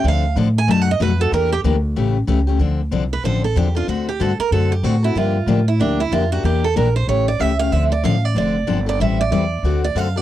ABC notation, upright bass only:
X:1
M:4/4
L:1/8
Q:"Swing" 1/4=188
K:Dm
V:1 name="Upright bass" clef=bass
D,,2 A,,2 ^F,,2 =F,,2 | E,,2 D,,2 A,,,2 ^C,,2 | D,,2 C,,2 A,,,2 E,,2 | D,,2 G,, z ^F,,2 A,,2 |
G,,2 A,,2 D,,2 F,,2 | E,,2 B,,,2 A,,,2 ^C,,2 | D,,2 A,,,2 F,,,2 G,,,2 | A,,,2 E,,2 D,,2 ^F,,2 |]